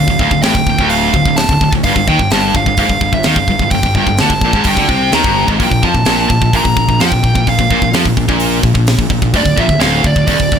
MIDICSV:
0, 0, Header, 1, 5, 480
1, 0, Start_track
1, 0, Tempo, 469484
1, 1879, Time_signature, 4, 2, 24, 8
1, 10827, End_track
2, 0, Start_track
2, 0, Title_t, "Lead electric guitar"
2, 0, Program_c, 0, 29
2, 0, Note_on_c, 0, 77, 91
2, 179, Note_off_c, 0, 77, 0
2, 212, Note_on_c, 0, 77, 83
2, 431, Note_off_c, 0, 77, 0
2, 435, Note_on_c, 0, 79, 93
2, 918, Note_off_c, 0, 79, 0
2, 922, Note_on_c, 0, 77, 94
2, 1395, Note_on_c, 0, 81, 94
2, 1415, Note_off_c, 0, 77, 0
2, 1731, Note_off_c, 0, 81, 0
2, 1882, Note_on_c, 0, 77, 93
2, 2127, Note_off_c, 0, 77, 0
2, 2132, Note_on_c, 0, 79, 92
2, 2362, Note_on_c, 0, 81, 101
2, 2372, Note_off_c, 0, 79, 0
2, 2607, Note_off_c, 0, 81, 0
2, 2617, Note_on_c, 0, 77, 98
2, 2844, Note_off_c, 0, 77, 0
2, 2856, Note_on_c, 0, 77, 96
2, 3182, Note_off_c, 0, 77, 0
2, 3214, Note_on_c, 0, 76, 85
2, 3329, Note_off_c, 0, 76, 0
2, 3341, Note_on_c, 0, 77, 88
2, 3791, Note_off_c, 0, 77, 0
2, 3795, Note_on_c, 0, 79, 100
2, 4019, Note_off_c, 0, 79, 0
2, 4047, Note_on_c, 0, 79, 94
2, 4265, Note_off_c, 0, 79, 0
2, 4300, Note_on_c, 0, 81, 102
2, 4772, Note_on_c, 0, 79, 99
2, 4782, Note_off_c, 0, 81, 0
2, 5258, Note_off_c, 0, 79, 0
2, 5260, Note_on_c, 0, 82, 96
2, 5584, Note_off_c, 0, 82, 0
2, 5759, Note_on_c, 0, 79, 101
2, 5976, Note_on_c, 0, 81, 98
2, 5984, Note_off_c, 0, 79, 0
2, 6413, Note_off_c, 0, 81, 0
2, 6434, Note_on_c, 0, 81, 102
2, 6682, Note_off_c, 0, 81, 0
2, 6709, Note_on_c, 0, 82, 109
2, 7159, Note_on_c, 0, 79, 87
2, 7186, Note_off_c, 0, 82, 0
2, 7652, Note_off_c, 0, 79, 0
2, 7659, Note_on_c, 0, 77, 92
2, 8095, Note_off_c, 0, 77, 0
2, 9573, Note_on_c, 0, 74, 99
2, 9809, Note_on_c, 0, 76, 99
2, 9813, Note_off_c, 0, 74, 0
2, 10032, Note_off_c, 0, 76, 0
2, 10036, Note_on_c, 0, 77, 99
2, 10285, Note_off_c, 0, 77, 0
2, 10289, Note_on_c, 0, 74, 91
2, 10492, Note_off_c, 0, 74, 0
2, 10504, Note_on_c, 0, 74, 94
2, 10827, Note_off_c, 0, 74, 0
2, 10827, End_track
3, 0, Start_track
3, 0, Title_t, "Distorted electric guitar"
3, 0, Program_c, 1, 30
3, 101, Note_on_c, 1, 38, 71
3, 201, Note_off_c, 1, 38, 0
3, 213, Note_on_c, 1, 38, 104
3, 319, Note_off_c, 1, 38, 0
3, 331, Note_on_c, 1, 38, 71
3, 441, Note_off_c, 1, 38, 0
3, 446, Note_on_c, 1, 45, 104
3, 556, Note_off_c, 1, 45, 0
3, 568, Note_on_c, 1, 38, 69
3, 684, Note_off_c, 1, 38, 0
3, 706, Note_on_c, 1, 38, 72
3, 804, Note_off_c, 1, 38, 0
3, 816, Note_on_c, 1, 38, 97
3, 1161, Note_off_c, 1, 38, 0
3, 1176, Note_on_c, 1, 38, 70
3, 1285, Note_off_c, 1, 38, 0
3, 1297, Note_on_c, 1, 38, 72
3, 1480, Note_off_c, 1, 38, 0
3, 1544, Note_on_c, 1, 38, 71
3, 1644, Note_off_c, 1, 38, 0
3, 1656, Note_on_c, 1, 38, 77
3, 1764, Note_off_c, 1, 38, 0
3, 1776, Note_on_c, 1, 38, 72
3, 1887, Note_off_c, 1, 38, 0
3, 1895, Note_on_c, 1, 43, 103
3, 2000, Note_off_c, 1, 43, 0
3, 2016, Note_on_c, 1, 43, 78
3, 2127, Note_off_c, 1, 43, 0
3, 2132, Note_on_c, 1, 51, 102
3, 2238, Note_off_c, 1, 51, 0
3, 2251, Note_on_c, 1, 43, 71
3, 2362, Note_off_c, 1, 43, 0
3, 2374, Note_on_c, 1, 43, 106
3, 2599, Note_off_c, 1, 43, 0
3, 2616, Note_on_c, 1, 43, 72
3, 2720, Note_off_c, 1, 43, 0
3, 2732, Note_on_c, 1, 43, 66
3, 2843, Note_off_c, 1, 43, 0
3, 2847, Note_on_c, 1, 44, 107
3, 2955, Note_off_c, 1, 44, 0
3, 2965, Note_on_c, 1, 43, 75
3, 3068, Note_off_c, 1, 43, 0
3, 3081, Note_on_c, 1, 43, 71
3, 3192, Note_off_c, 1, 43, 0
3, 3205, Note_on_c, 1, 43, 73
3, 3321, Note_off_c, 1, 43, 0
3, 3335, Note_on_c, 1, 51, 106
3, 3439, Note_off_c, 1, 51, 0
3, 3459, Note_on_c, 1, 43, 74
3, 3564, Note_off_c, 1, 43, 0
3, 3576, Note_on_c, 1, 43, 70
3, 3684, Note_off_c, 1, 43, 0
3, 3696, Note_on_c, 1, 43, 70
3, 3806, Note_off_c, 1, 43, 0
3, 3827, Note_on_c, 1, 43, 72
3, 3932, Note_off_c, 1, 43, 0
3, 3943, Note_on_c, 1, 43, 74
3, 4047, Note_off_c, 1, 43, 0
3, 4059, Note_on_c, 1, 43, 103
3, 4161, Note_off_c, 1, 43, 0
3, 4181, Note_on_c, 1, 43, 69
3, 4288, Note_off_c, 1, 43, 0
3, 4303, Note_on_c, 1, 50, 98
3, 4402, Note_off_c, 1, 50, 0
3, 4424, Note_on_c, 1, 43, 65
3, 4530, Note_off_c, 1, 43, 0
3, 4538, Note_on_c, 1, 46, 105
3, 4640, Note_off_c, 1, 46, 0
3, 4646, Note_on_c, 1, 44, 99
3, 4754, Note_off_c, 1, 44, 0
3, 4762, Note_on_c, 1, 43, 105
3, 4872, Note_off_c, 1, 43, 0
3, 4884, Note_on_c, 1, 50, 100
3, 4993, Note_off_c, 1, 50, 0
3, 4998, Note_on_c, 1, 48, 101
3, 5230, Note_off_c, 1, 48, 0
3, 5248, Note_on_c, 1, 51, 105
3, 5354, Note_off_c, 1, 51, 0
3, 5363, Note_on_c, 1, 43, 96
3, 5592, Note_off_c, 1, 43, 0
3, 5601, Note_on_c, 1, 44, 91
3, 5711, Note_off_c, 1, 44, 0
3, 5718, Note_on_c, 1, 46, 109
3, 5826, Note_off_c, 1, 46, 0
3, 5838, Note_on_c, 1, 46, 72
3, 5957, Note_off_c, 1, 46, 0
3, 5963, Note_on_c, 1, 53, 97
3, 6072, Note_off_c, 1, 53, 0
3, 6074, Note_on_c, 1, 46, 70
3, 6186, Note_off_c, 1, 46, 0
3, 6198, Note_on_c, 1, 46, 97
3, 6430, Note_off_c, 1, 46, 0
3, 6449, Note_on_c, 1, 46, 74
3, 6551, Note_off_c, 1, 46, 0
3, 6563, Note_on_c, 1, 46, 71
3, 6673, Note_off_c, 1, 46, 0
3, 6685, Note_on_c, 1, 46, 102
3, 6793, Note_off_c, 1, 46, 0
3, 6815, Note_on_c, 1, 46, 78
3, 6904, Note_off_c, 1, 46, 0
3, 6916, Note_on_c, 1, 46, 66
3, 7033, Note_off_c, 1, 46, 0
3, 7045, Note_on_c, 1, 46, 71
3, 7160, Note_off_c, 1, 46, 0
3, 7167, Note_on_c, 1, 53, 103
3, 7274, Note_off_c, 1, 53, 0
3, 7283, Note_on_c, 1, 46, 76
3, 7379, Note_off_c, 1, 46, 0
3, 7391, Note_on_c, 1, 46, 69
3, 7502, Note_off_c, 1, 46, 0
3, 7514, Note_on_c, 1, 46, 71
3, 7629, Note_off_c, 1, 46, 0
3, 7642, Note_on_c, 1, 46, 72
3, 7759, Note_off_c, 1, 46, 0
3, 7774, Note_on_c, 1, 46, 73
3, 7874, Note_off_c, 1, 46, 0
3, 7886, Note_on_c, 1, 46, 99
3, 7994, Note_off_c, 1, 46, 0
3, 8006, Note_on_c, 1, 46, 72
3, 8120, Note_on_c, 1, 53, 110
3, 8121, Note_off_c, 1, 46, 0
3, 8230, Note_on_c, 1, 46, 67
3, 8231, Note_off_c, 1, 53, 0
3, 8343, Note_off_c, 1, 46, 0
3, 8355, Note_on_c, 1, 46, 78
3, 8455, Note_off_c, 1, 46, 0
3, 8468, Note_on_c, 1, 46, 102
3, 8816, Note_off_c, 1, 46, 0
3, 8829, Note_on_c, 1, 46, 67
3, 8926, Note_off_c, 1, 46, 0
3, 8938, Note_on_c, 1, 46, 70
3, 9140, Note_off_c, 1, 46, 0
3, 9185, Note_on_c, 1, 46, 74
3, 9294, Note_off_c, 1, 46, 0
3, 9307, Note_on_c, 1, 46, 76
3, 9419, Note_off_c, 1, 46, 0
3, 9431, Note_on_c, 1, 46, 73
3, 9541, Note_off_c, 1, 46, 0
3, 9545, Note_on_c, 1, 38, 106
3, 9642, Note_off_c, 1, 38, 0
3, 9655, Note_on_c, 1, 38, 73
3, 9773, Note_off_c, 1, 38, 0
3, 9777, Note_on_c, 1, 46, 106
3, 9899, Note_off_c, 1, 46, 0
3, 9903, Note_on_c, 1, 38, 70
3, 10000, Note_off_c, 1, 38, 0
3, 10012, Note_on_c, 1, 38, 109
3, 10254, Note_off_c, 1, 38, 0
3, 10267, Note_on_c, 1, 38, 75
3, 10377, Note_off_c, 1, 38, 0
3, 10389, Note_on_c, 1, 38, 69
3, 10500, Note_off_c, 1, 38, 0
3, 10505, Note_on_c, 1, 39, 104
3, 10625, Note_off_c, 1, 39, 0
3, 10632, Note_on_c, 1, 38, 76
3, 10753, Note_off_c, 1, 38, 0
3, 10765, Note_on_c, 1, 38, 72
3, 10827, Note_off_c, 1, 38, 0
3, 10827, End_track
4, 0, Start_track
4, 0, Title_t, "Fingered electric bass"
4, 0, Program_c, 2, 33
4, 79, Note_on_c, 2, 26, 81
4, 191, Note_off_c, 2, 26, 0
4, 199, Note_on_c, 2, 26, 92
4, 308, Note_off_c, 2, 26, 0
4, 314, Note_on_c, 2, 26, 71
4, 429, Note_off_c, 2, 26, 0
4, 437, Note_on_c, 2, 33, 95
4, 550, Note_off_c, 2, 33, 0
4, 559, Note_on_c, 2, 26, 82
4, 671, Note_off_c, 2, 26, 0
4, 676, Note_on_c, 2, 26, 81
4, 789, Note_off_c, 2, 26, 0
4, 806, Note_on_c, 2, 26, 94
4, 1138, Note_off_c, 2, 26, 0
4, 1165, Note_on_c, 2, 26, 82
4, 1274, Note_off_c, 2, 26, 0
4, 1282, Note_on_c, 2, 26, 80
4, 1504, Note_off_c, 2, 26, 0
4, 1524, Note_on_c, 2, 26, 75
4, 1633, Note_off_c, 2, 26, 0
4, 1644, Note_on_c, 2, 26, 77
4, 1753, Note_off_c, 2, 26, 0
4, 1764, Note_on_c, 2, 26, 81
4, 1873, Note_off_c, 2, 26, 0
4, 1881, Note_on_c, 2, 31, 87
4, 1991, Note_off_c, 2, 31, 0
4, 2001, Note_on_c, 2, 31, 79
4, 2111, Note_off_c, 2, 31, 0
4, 2126, Note_on_c, 2, 39, 94
4, 2234, Note_off_c, 2, 39, 0
4, 2240, Note_on_c, 2, 31, 76
4, 2351, Note_off_c, 2, 31, 0
4, 2365, Note_on_c, 2, 31, 99
4, 2585, Note_off_c, 2, 31, 0
4, 2607, Note_on_c, 2, 31, 79
4, 2714, Note_off_c, 2, 31, 0
4, 2726, Note_on_c, 2, 31, 85
4, 2834, Note_off_c, 2, 31, 0
4, 2841, Note_on_c, 2, 32, 86
4, 2947, Note_off_c, 2, 32, 0
4, 2954, Note_on_c, 2, 31, 73
4, 3067, Note_off_c, 2, 31, 0
4, 3079, Note_on_c, 2, 31, 86
4, 3190, Note_off_c, 2, 31, 0
4, 3197, Note_on_c, 2, 31, 77
4, 3309, Note_off_c, 2, 31, 0
4, 3335, Note_on_c, 2, 39, 99
4, 3429, Note_off_c, 2, 39, 0
4, 3435, Note_on_c, 2, 31, 80
4, 3548, Note_off_c, 2, 31, 0
4, 3556, Note_on_c, 2, 31, 77
4, 3662, Note_off_c, 2, 31, 0
4, 3668, Note_on_c, 2, 31, 80
4, 3784, Note_off_c, 2, 31, 0
4, 3794, Note_on_c, 2, 31, 72
4, 3907, Note_off_c, 2, 31, 0
4, 3915, Note_on_c, 2, 31, 82
4, 4027, Note_off_c, 2, 31, 0
4, 4035, Note_on_c, 2, 31, 93
4, 4147, Note_off_c, 2, 31, 0
4, 4159, Note_on_c, 2, 31, 72
4, 4269, Note_off_c, 2, 31, 0
4, 4291, Note_on_c, 2, 38, 91
4, 4390, Note_off_c, 2, 38, 0
4, 4396, Note_on_c, 2, 31, 81
4, 4505, Note_off_c, 2, 31, 0
4, 4511, Note_on_c, 2, 34, 96
4, 4625, Note_off_c, 2, 34, 0
4, 4632, Note_on_c, 2, 32, 102
4, 4745, Note_off_c, 2, 32, 0
4, 4754, Note_on_c, 2, 31, 85
4, 4866, Note_off_c, 2, 31, 0
4, 4872, Note_on_c, 2, 38, 84
4, 4986, Note_off_c, 2, 38, 0
4, 4995, Note_on_c, 2, 36, 100
4, 5218, Note_off_c, 2, 36, 0
4, 5250, Note_on_c, 2, 39, 92
4, 5355, Note_off_c, 2, 39, 0
4, 5362, Note_on_c, 2, 31, 91
4, 5582, Note_off_c, 2, 31, 0
4, 5604, Note_on_c, 2, 32, 95
4, 5712, Note_off_c, 2, 32, 0
4, 5723, Note_on_c, 2, 34, 86
4, 5831, Note_off_c, 2, 34, 0
4, 5839, Note_on_c, 2, 34, 81
4, 5949, Note_off_c, 2, 34, 0
4, 5958, Note_on_c, 2, 41, 98
4, 6069, Note_off_c, 2, 41, 0
4, 6079, Note_on_c, 2, 34, 80
4, 6189, Note_off_c, 2, 34, 0
4, 6203, Note_on_c, 2, 34, 101
4, 6423, Note_off_c, 2, 34, 0
4, 6443, Note_on_c, 2, 34, 84
4, 6551, Note_off_c, 2, 34, 0
4, 6556, Note_on_c, 2, 34, 81
4, 6667, Note_off_c, 2, 34, 0
4, 6680, Note_on_c, 2, 34, 93
4, 6789, Note_off_c, 2, 34, 0
4, 6797, Note_on_c, 2, 34, 74
4, 6908, Note_off_c, 2, 34, 0
4, 6921, Note_on_c, 2, 34, 78
4, 7030, Note_off_c, 2, 34, 0
4, 7039, Note_on_c, 2, 34, 82
4, 7149, Note_off_c, 2, 34, 0
4, 7157, Note_on_c, 2, 41, 91
4, 7268, Note_off_c, 2, 41, 0
4, 7278, Note_on_c, 2, 34, 78
4, 7388, Note_off_c, 2, 34, 0
4, 7398, Note_on_c, 2, 34, 75
4, 7509, Note_off_c, 2, 34, 0
4, 7517, Note_on_c, 2, 34, 81
4, 7628, Note_off_c, 2, 34, 0
4, 7639, Note_on_c, 2, 34, 82
4, 7749, Note_off_c, 2, 34, 0
4, 7758, Note_on_c, 2, 34, 80
4, 7869, Note_off_c, 2, 34, 0
4, 7879, Note_on_c, 2, 34, 97
4, 7986, Note_off_c, 2, 34, 0
4, 7992, Note_on_c, 2, 34, 74
4, 8100, Note_off_c, 2, 34, 0
4, 8106, Note_on_c, 2, 41, 96
4, 8223, Note_off_c, 2, 41, 0
4, 8236, Note_on_c, 2, 34, 88
4, 8345, Note_off_c, 2, 34, 0
4, 8351, Note_on_c, 2, 34, 76
4, 8463, Note_off_c, 2, 34, 0
4, 8469, Note_on_c, 2, 34, 93
4, 8808, Note_off_c, 2, 34, 0
4, 8828, Note_on_c, 2, 34, 82
4, 8944, Note_off_c, 2, 34, 0
4, 8949, Note_on_c, 2, 34, 76
4, 9176, Note_off_c, 2, 34, 0
4, 9185, Note_on_c, 2, 34, 82
4, 9297, Note_off_c, 2, 34, 0
4, 9303, Note_on_c, 2, 34, 77
4, 9421, Note_off_c, 2, 34, 0
4, 9426, Note_on_c, 2, 34, 74
4, 9537, Note_off_c, 2, 34, 0
4, 9543, Note_on_c, 2, 26, 94
4, 9662, Note_off_c, 2, 26, 0
4, 9668, Note_on_c, 2, 26, 82
4, 9784, Note_off_c, 2, 26, 0
4, 9793, Note_on_c, 2, 34, 100
4, 9900, Note_off_c, 2, 34, 0
4, 9906, Note_on_c, 2, 26, 80
4, 10023, Note_off_c, 2, 26, 0
4, 10035, Note_on_c, 2, 26, 96
4, 10260, Note_off_c, 2, 26, 0
4, 10266, Note_on_c, 2, 26, 75
4, 10378, Note_off_c, 2, 26, 0
4, 10384, Note_on_c, 2, 26, 87
4, 10498, Note_off_c, 2, 26, 0
4, 10504, Note_on_c, 2, 27, 90
4, 10623, Note_off_c, 2, 27, 0
4, 10635, Note_on_c, 2, 26, 74
4, 10749, Note_off_c, 2, 26, 0
4, 10757, Note_on_c, 2, 26, 86
4, 10827, Note_off_c, 2, 26, 0
4, 10827, End_track
5, 0, Start_track
5, 0, Title_t, "Drums"
5, 79, Note_on_c, 9, 36, 85
5, 181, Note_off_c, 9, 36, 0
5, 198, Note_on_c, 9, 36, 86
5, 300, Note_off_c, 9, 36, 0
5, 319, Note_on_c, 9, 36, 79
5, 421, Note_off_c, 9, 36, 0
5, 434, Note_on_c, 9, 46, 58
5, 446, Note_on_c, 9, 38, 110
5, 536, Note_off_c, 9, 46, 0
5, 549, Note_off_c, 9, 38, 0
5, 561, Note_on_c, 9, 36, 87
5, 663, Note_off_c, 9, 36, 0
5, 681, Note_on_c, 9, 36, 84
5, 783, Note_off_c, 9, 36, 0
5, 802, Note_on_c, 9, 36, 79
5, 905, Note_off_c, 9, 36, 0
5, 916, Note_on_c, 9, 46, 61
5, 1018, Note_off_c, 9, 46, 0
5, 1163, Note_on_c, 9, 36, 91
5, 1265, Note_off_c, 9, 36, 0
5, 1283, Note_on_c, 9, 36, 88
5, 1385, Note_off_c, 9, 36, 0
5, 1397, Note_on_c, 9, 46, 57
5, 1409, Note_on_c, 9, 38, 101
5, 1499, Note_off_c, 9, 46, 0
5, 1511, Note_off_c, 9, 38, 0
5, 1523, Note_on_c, 9, 36, 88
5, 1626, Note_off_c, 9, 36, 0
5, 1647, Note_on_c, 9, 36, 84
5, 1749, Note_off_c, 9, 36, 0
5, 1764, Note_on_c, 9, 36, 89
5, 1866, Note_off_c, 9, 36, 0
5, 1874, Note_on_c, 9, 46, 56
5, 1881, Note_on_c, 9, 36, 87
5, 1976, Note_off_c, 9, 46, 0
5, 1984, Note_off_c, 9, 36, 0
5, 2003, Note_on_c, 9, 36, 84
5, 2105, Note_off_c, 9, 36, 0
5, 2122, Note_on_c, 9, 36, 88
5, 2224, Note_off_c, 9, 36, 0
5, 2243, Note_on_c, 9, 36, 78
5, 2345, Note_off_c, 9, 36, 0
5, 2356, Note_on_c, 9, 46, 55
5, 2369, Note_on_c, 9, 38, 112
5, 2459, Note_off_c, 9, 46, 0
5, 2471, Note_off_c, 9, 38, 0
5, 2603, Note_on_c, 9, 36, 92
5, 2706, Note_off_c, 9, 36, 0
5, 2722, Note_on_c, 9, 36, 85
5, 2825, Note_off_c, 9, 36, 0
5, 2831, Note_on_c, 9, 46, 58
5, 2839, Note_on_c, 9, 36, 97
5, 2934, Note_off_c, 9, 46, 0
5, 2941, Note_off_c, 9, 36, 0
5, 2960, Note_on_c, 9, 36, 78
5, 3062, Note_off_c, 9, 36, 0
5, 3079, Note_on_c, 9, 36, 83
5, 3181, Note_off_c, 9, 36, 0
5, 3197, Note_on_c, 9, 36, 82
5, 3299, Note_off_c, 9, 36, 0
5, 3303, Note_on_c, 9, 46, 54
5, 3315, Note_on_c, 9, 38, 106
5, 3405, Note_off_c, 9, 46, 0
5, 3417, Note_off_c, 9, 38, 0
5, 3436, Note_on_c, 9, 36, 88
5, 3539, Note_off_c, 9, 36, 0
5, 3556, Note_on_c, 9, 36, 78
5, 3658, Note_off_c, 9, 36, 0
5, 3674, Note_on_c, 9, 36, 82
5, 3777, Note_off_c, 9, 36, 0
5, 3789, Note_on_c, 9, 46, 60
5, 3796, Note_on_c, 9, 36, 88
5, 3891, Note_off_c, 9, 46, 0
5, 3898, Note_off_c, 9, 36, 0
5, 3918, Note_on_c, 9, 36, 80
5, 4020, Note_off_c, 9, 36, 0
5, 4037, Note_on_c, 9, 36, 82
5, 4139, Note_off_c, 9, 36, 0
5, 4158, Note_on_c, 9, 36, 81
5, 4260, Note_off_c, 9, 36, 0
5, 4267, Note_on_c, 9, 46, 57
5, 4280, Note_on_c, 9, 38, 109
5, 4370, Note_off_c, 9, 46, 0
5, 4382, Note_off_c, 9, 38, 0
5, 4396, Note_on_c, 9, 36, 83
5, 4498, Note_off_c, 9, 36, 0
5, 4513, Note_on_c, 9, 36, 89
5, 4615, Note_off_c, 9, 36, 0
5, 4634, Note_on_c, 9, 36, 86
5, 4736, Note_off_c, 9, 36, 0
5, 4743, Note_on_c, 9, 46, 66
5, 4754, Note_on_c, 9, 36, 94
5, 4845, Note_off_c, 9, 46, 0
5, 4856, Note_off_c, 9, 36, 0
5, 4876, Note_on_c, 9, 36, 83
5, 4978, Note_off_c, 9, 36, 0
5, 4998, Note_on_c, 9, 36, 83
5, 5100, Note_off_c, 9, 36, 0
5, 5234, Note_on_c, 9, 46, 58
5, 5246, Note_on_c, 9, 38, 109
5, 5336, Note_off_c, 9, 46, 0
5, 5348, Note_off_c, 9, 38, 0
5, 5361, Note_on_c, 9, 36, 106
5, 5463, Note_off_c, 9, 36, 0
5, 5604, Note_on_c, 9, 36, 108
5, 5707, Note_off_c, 9, 36, 0
5, 5724, Note_on_c, 9, 36, 92
5, 5737, Note_on_c, 9, 46, 56
5, 5827, Note_off_c, 9, 36, 0
5, 5839, Note_off_c, 9, 46, 0
5, 5842, Note_on_c, 9, 36, 83
5, 5945, Note_off_c, 9, 36, 0
5, 5961, Note_on_c, 9, 36, 82
5, 6064, Note_off_c, 9, 36, 0
5, 6078, Note_on_c, 9, 36, 79
5, 6181, Note_off_c, 9, 36, 0
5, 6187, Note_on_c, 9, 46, 59
5, 6199, Note_on_c, 9, 38, 107
5, 6289, Note_off_c, 9, 46, 0
5, 6302, Note_off_c, 9, 38, 0
5, 6441, Note_on_c, 9, 36, 93
5, 6543, Note_off_c, 9, 36, 0
5, 6560, Note_on_c, 9, 36, 89
5, 6662, Note_off_c, 9, 36, 0
5, 6680, Note_on_c, 9, 36, 95
5, 6686, Note_on_c, 9, 46, 60
5, 6782, Note_off_c, 9, 36, 0
5, 6788, Note_off_c, 9, 46, 0
5, 6800, Note_on_c, 9, 36, 82
5, 6902, Note_off_c, 9, 36, 0
5, 6919, Note_on_c, 9, 36, 83
5, 7021, Note_off_c, 9, 36, 0
5, 7040, Note_on_c, 9, 36, 81
5, 7142, Note_off_c, 9, 36, 0
5, 7157, Note_on_c, 9, 46, 54
5, 7170, Note_on_c, 9, 38, 106
5, 7260, Note_off_c, 9, 46, 0
5, 7272, Note_off_c, 9, 38, 0
5, 7277, Note_on_c, 9, 36, 88
5, 7379, Note_off_c, 9, 36, 0
5, 7399, Note_on_c, 9, 36, 79
5, 7502, Note_off_c, 9, 36, 0
5, 7519, Note_on_c, 9, 36, 87
5, 7621, Note_off_c, 9, 36, 0
5, 7639, Note_on_c, 9, 36, 83
5, 7647, Note_on_c, 9, 46, 56
5, 7741, Note_off_c, 9, 36, 0
5, 7749, Note_off_c, 9, 46, 0
5, 7758, Note_on_c, 9, 36, 87
5, 7860, Note_off_c, 9, 36, 0
5, 7878, Note_on_c, 9, 36, 85
5, 7980, Note_off_c, 9, 36, 0
5, 7995, Note_on_c, 9, 36, 83
5, 8097, Note_off_c, 9, 36, 0
5, 8112, Note_on_c, 9, 46, 60
5, 8125, Note_on_c, 9, 38, 108
5, 8215, Note_off_c, 9, 46, 0
5, 8227, Note_off_c, 9, 38, 0
5, 8235, Note_on_c, 9, 36, 82
5, 8337, Note_off_c, 9, 36, 0
5, 8354, Note_on_c, 9, 36, 78
5, 8456, Note_off_c, 9, 36, 0
5, 8472, Note_on_c, 9, 36, 82
5, 8575, Note_off_c, 9, 36, 0
5, 8585, Note_on_c, 9, 46, 63
5, 8687, Note_off_c, 9, 46, 0
5, 8828, Note_on_c, 9, 36, 91
5, 8930, Note_off_c, 9, 36, 0
5, 8947, Note_on_c, 9, 36, 81
5, 9049, Note_off_c, 9, 36, 0
5, 9066, Note_on_c, 9, 46, 63
5, 9078, Note_on_c, 9, 38, 113
5, 9168, Note_off_c, 9, 46, 0
5, 9180, Note_off_c, 9, 38, 0
5, 9187, Note_on_c, 9, 36, 91
5, 9290, Note_off_c, 9, 36, 0
5, 9304, Note_on_c, 9, 36, 88
5, 9406, Note_off_c, 9, 36, 0
5, 9427, Note_on_c, 9, 36, 86
5, 9529, Note_off_c, 9, 36, 0
5, 9547, Note_on_c, 9, 36, 93
5, 9551, Note_on_c, 9, 46, 55
5, 9649, Note_off_c, 9, 36, 0
5, 9653, Note_off_c, 9, 46, 0
5, 9667, Note_on_c, 9, 36, 87
5, 9769, Note_off_c, 9, 36, 0
5, 9790, Note_on_c, 9, 36, 92
5, 9892, Note_off_c, 9, 36, 0
5, 9907, Note_on_c, 9, 36, 86
5, 10009, Note_off_c, 9, 36, 0
5, 10022, Note_on_c, 9, 46, 57
5, 10035, Note_on_c, 9, 38, 109
5, 10125, Note_off_c, 9, 46, 0
5, 10137, Note_off_c, 9, 38, 0
5, 10268, Note_on_c, 9, 36, 92
5, 10371, Note_off_c, 9, 36, 0
5, 10388, Note_on_c, 9, 36, 86
5, 10490, Note_off_c, 9, 36, 0
5, 10503, Note_on_c, 9, 46, 60
5, 10508, Note_on_c, 9, 36, 98
5, 10605, Note_off_c, 9, 46, 0
5, 10610, Note_off_c, 9, 36, 0
5, 10631, Note_on_c, 9, 36, 80
5, 10733, Note_off_c, 9, 36, 0
5, 10755, Note_on_c, 9, 36, 81
5, 10827, Note_off_c, 9, 36, 0
5, 10827, End_track
0, 0, End_of_file